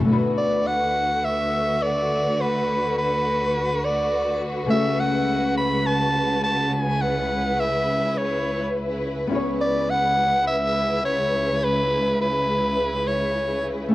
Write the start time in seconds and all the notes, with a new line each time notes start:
0.05 D3 A3 B3 D4 F#4
0.09 D2 F#4 B4
0.37 D5
0.67 F#5
1.25 E5
1.82 D5
2.41 B4
2.98 B4
3.84 D5
4.66 C#2 C#3 A3 C#4
4.70 C#3 E4 F#4 C#5 E5
5.00 F#5
5.57 B5
5.86 A5
6.44 A5
6.73 G#5
7.01 E4 F#5
7.60 E5
8.17 C#5
9.27 B3 C#4 E4
9.32 C#2 C#3 E4 G#4 C#5
9.61 D5
9.90 F#5
10.47 E5
11.05 C#5
11.64 B4
12.21 B4
13.08 C#5
13.89 A3 C#4